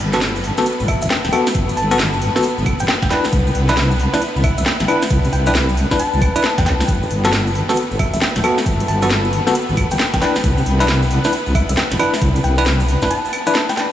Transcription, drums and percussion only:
0.13 snare medium
0.13 closed hi-hat medium
0.13 cabasa medium
0.22 snare loud
0.22 cabasa medium
0.36 cabasa soft
0.44 open hi-hat loud
0.57 snare medium
0.57 cabasa medium
0.66 closed hi-hat medium
0.66 cabasa medium
0.80 cabasa soft
0.88 kick loud
0.88 open hi-hat loud
0.88 claves medium
1.01 closed hi-hat medium
1.01 cabasa medium
1.10 snare loud
1.10 cabasa medium
1.25 snare medium
1.25 closed hi-hat medium
1.25 cabasa soft
1.33 open hi-hat loud
1.33 claves medium
1.47 snare medium
1.47 cabasa medium
1.55 kick loud
1.55 closed hi-hat medium
1.55 cabasa medium
1.69 closed hi-hat soft
1.69 cabasa soft
1.77 open hi-hat loud
1.91 closed hi-hat medium
1.91 cabasa medium
1.99 snare loud
1.99 cabasa medium
2.13 cabasa soft
2.22 open hi-hat loud
2.36 snare medium
2.36 cabasa medium
2.43 closed hi-hat medium
2.43 cabasa medium
2.58 cabasa soft
2.66 kick loud
2.66 open hi-hat loud
2.66 claves medium
2.79 closed hi-hat medium
2.79 cabasa medium
2.88 snare loud
2.88 cabasa medium
3.02 kick loud
3.02 snare medium
3.02 closed hi-hat soft
3.02 cabasa soft
3.11 snare medium
3.11 open hi-hat loud
3.25 snare medium
3.25 cabasa medium
3.33 kick loud
3.33 closed hi-hat medium
3.33 cabasa medium
3.47 cabasa soft
3.55 open hi-hat loud
3.69 snare medium
3.69 closed hi-hat medium
3.69 cabasa medium
3.77 snare loud
3.77 cabasa medium
3.91 cabasa soft
3.99 open hi-hat loud
4.14 snare medium
4.14 cabasa medium
4.21 closed hi-hat medium
4.21 cabasa medium
4.36 cabasa soft
4.44 kick loud
4.44 open hi-hat loud
4.44 claves medium
4.58 closed hi-hat medium
4.58 cabasa medium
4.66 snare loud
4.66 cabasa medium
4.80 snare medium
4.80 closed hi-hat medium
4.80 cabasa soft
4.88 open hi-hat loud
4.88 claves medium
5.02 snare medium
5.02 cabasa medium
5.10 kick loud
5.10 closed hi-hat medium
5.10 cabasa medium
5.25 closed hi-hat soft
5.25 cabasa soft
5.33 open hi-hat loud
5.46 closed hi-hat medium
5.46 cabasa medium
5.55 snare loud
5.55 cabasa medium
5.69 cabasa soft
5.77 open hi-hat loud
5.91 kick medium
5.91 snare medium
5.91 cabasa medium
5.99 closed hi-hat medium
5.99 cabasa medium
6.13 cabasa soft
6.22 kick loud
6.22 open hi-hat loud
6.22 claves medium
6.36 closed hi-hat medium
6.36 cabasa medium
6.44 snare loud
6.44 cabasa medium
6.58 kick loud
6.58 snare medium
6.58 closed hi-hat medium
6.58 cabasa soft
6.66 snare medium
6.66 open hi-hat loud
6.80 snare medium
6.80 cabasa medium
6.88 kick loud
6.88 closed hi-hat medium
6.88 cabasa medium
7.03 cabasa soft
7.11 open hi-hat loud
7.25 snare medium
7.25 closed hi-hat medium
7.25 cabasa medium
7.33 snare loud
7.33 cabasa medium
7.47 cabasa soft
7.55 open hi-hat medium
7.69 snare medium
7.69 cabasa medium
7.76 closed hi-hat medium
7.76 cabasa medium
7.91 cabasa soft
7.99 kick loud
7.99 open hi-hat loud
7.99 claves medium
8.14 closed hi-hat medium
8.14 cabasa medium
8.22 snare loud
8.22 cabasa medium
8.36 snare soft
8.36 closed hi-hat medium
8.36 cabasa soft
8.44 open hi-hat loud
8.44 claves medium
8.58 snare medium
8.58 cabasa medium
8.66 kick loud
8.66 closed hi-hat medium
8.66 cabasa medium
8.80 closed hi-hat soft
8.80 cabasa soft
8.88 open hi-hat loud
9.02 closed hi-hat medium
9.02 cabasa medium
9.10 snare loud
9.10 cabasa medium
9.24 cabasa soft
9.33 open hi-hat loud
9.47 snare medium
9.47 cabasa medium
9.55 closed hi-hat medium
9.55 cabasa medium
9.69 cabasa soft
9.77 kick loud
9.77 open hi-hat loud
9.77 claves medium
9.91 closed hi-hat medium
9.91 cabasa medium
9.99 snare loud
9.99 cabasa medium
10.14 kick loud
10.14 snare soft
10.14 closed hi-hat medium
10.14 cabasa soft
10.22 snare medium
10.22 open hi-hat loud
10.36 snare medium
10.36 cabasa medium
10.44 kick loud
10.44 closed hi-hat medium
10.44 cabasa medium
10.58 cabasa soft
10.66 open hi-hat loud
10.80 snare medium
10.80 closed hi-hat medium
10.80 cabasa medium
10.88 snare loud
10.88 cabasa medium
11.03 cabasa soft
11.11 open hi-hat loud
11.24 snare medium
11.24 cabasa medium
11.32 closed hi-hat medium
11.32 cabasa medium
11.46 cabasa soft
11.55 kick loud
11.55 open hi-hat loud
11.55 claves medium
11.69 closed hi-hat medium
11.69 cabasa medium
11.77 snare loud
11.77 cabasa medium
11.91 snare soft
11.91 closed hi-hat medium
11.91 cabasa soft
11.99 open hi-hat loud
11.99 claves medium
12.14 snare medium
12.14 cabasa medium
12.21 kick loud
12.21 closed hi-hat medium
12.21 cabasa medium
12.36 closed hi-hat soft
12.36 cabasa soft
12.44 open hi-hat loud
12.58 closed hi-hat medium
12.58 cabasa medium
12.66 snare loud
12.66 cabasa medium
12.80 cabasa soft
12.88 open hi-hat loud
13.02 kick medium
13.02 snare medium
13.02 cabasa medium
13.11 closed hi-hat medium
13.11 cabasa medium
13.25 cabasa soft
13.33 open hi-hat loud
13.33 claves medium
13.47 closed hi-hat medium
13.47 cabasa medium
13.55 snare loud
13.55 cabasa medium
13.69 snare soft
13.69 closed hi-hat medium
13.69 cabasa soft
13.77 snare medium
13.77 open hi-hat loud

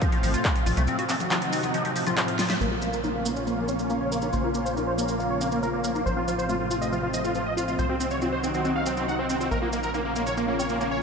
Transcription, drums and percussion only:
0.02 kick loud
0.02 closed hi-hat medium
0.02 cabasa soft
0.12 closed hi-hat medium
0.12 high conga medium
0.23 open hi-hat loud
0.23 cabasa medium
0.34 closed hi-hat medium
0.34 cabasa medium
0.45 kick loud
0.45 clap loud
0.45 closed hi-hat medium
0.45 cabasa soft
0.56 closed hi-hat medium
0.66 open hi-hat loud
0.66 high conga medium
0.66 cabasa medium
0.77 closed hi-hat medium
0.77 cabasa medium
0.87 closed hi-hat medium
0.87 cabasa soft
0.99 closed hi-hat medium
1.09 clap medium
1.09 open hi-hat loud
1.09 cabasa medium
1.20 closed hi-hat medium
1.20 high conga medium
1.20 cabasa soft
1.30 clap loud
1.30 closed hi-hat medium
1.30 high conga medium
1.30 cabasa soft
1.42 closed hi-hat medium
1.53 open hi-hat loud
1.53 cabasa medium
1.63 closed hi-hat medium
1.63 high conga medium
1.63 cabasa soft
1.74 closed hi-hat medium
1.74 cabasa soft
1.85 closed hi-hat medium
1.96 open hi-hat loud
1.96 cabasa medium
2.07 closed hi-hat medium
2.07 high conga medium
2.07 cabasa medium
2.17 clap loud
2.17 closed hi-hat medium
2.17 cabasa soft
2.28 closed hi-hat medium
2.39 snare medium
2.39 open hi-hat loud
2.39 cabasa medium
2.50 snare loud
2.50 closed hi-hat medium
2.50 cabasa medium
2.61 cabasa soft
2.82 cabasa medium
2.93 cabasa medium
3.04 cabasa soft
3.26 cabasa medium
3.36 cabasa soft
3.47 cabasa soft
3.68 cabasa medium
3.79 cabasa soft
3.90 cabasa soft
4.12 cabasa medium
4.22 cabasa medium
4.33 cabasa soft
4.54 cabasa medium
4.66 cabasa medium
4.77 cabasa soft
4.98 cabasa medium
5.08 cabasa medium
5.20 cabasa soft
5.41 cabasa medium
5.52 cabasa soft
5.63 cabasa soft
5.84 cabasa medium
5.95 cabasa soft
6.07 cabasa soft
6.28 cabasa medium
6.39 cabasa medium
6.49 cabasa soft
6.71 cabasa medium
6.82 cabasa soft
6.93 cabasa soft
7.14 cabasa loud
7.24 cabasa medium
7.35 cabasa soft
7.58 cabasa medium
7.68 cabasa soft
7.79 cabasa soft
8.00 cabasa loud
8.11 cabasa medium
8.22 cabasa soft
8.44 cabasa medium
8.54 cabasa soft
8.65 cabasa soft
8.86 cabasa medium
8.97 cabasa soft
9.09 cabasa soft
9.30 cabasa medium
9.41 cabasa soft
9.51 cabasa soft
9.73 cabasa medium
9.83 cabasa soft
9.94 cabasa soft
10.16 cabasa medium
10.27 cabasa soft
10.37 cabasa soft
10.59 cabasa medium
10.69 cabasa medium
10.81 cabasa soft

